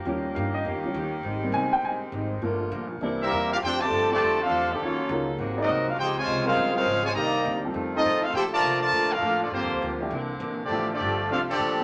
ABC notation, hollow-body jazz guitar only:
X:1
M:4/4
L:1/8
Q:"Swing" 1/4=203
K:F
V:1 name="Hollow-body jazz guitar"
[_E,B,_DG] z [E,B,DG] z [E,B,DG] z [E,B,DG] z | [_A,,G,C_E] z [A,,G,CE] z [A,,G,CE] z [A,,G,CE] z | [G,,F,B,D] z [G,,F,B,D] z [C,G,B,E] z [C,G,B,E] z | [F,A,DG] z [F,A,DG] z [F,A,DG] z [F,A,DG] z |
[_E,_G,_DF] z [E,G,DF] z [_A,,G,B,C] z [A,,G,B,C] z | [_D,F,_A,C] z [D,F,A,C] z [D,F,A,C] z [D,F,A,C] z | [C,_E,B,D] z [C,E,B,D] z [F,,E,A,C] z [F,,E,A,C] z | [B,,F,A,D] z [B,,F,A,D] z [B,,F,A,D] z [B,,F,A,D] z |
[G,,F,B,D] z [G,,F,B,D] z [C,E,B,D] z [C,E,B,D] z | [F,A,DG] z [F,A,DG] z [F,A,DG] z [F,A,DG] z |]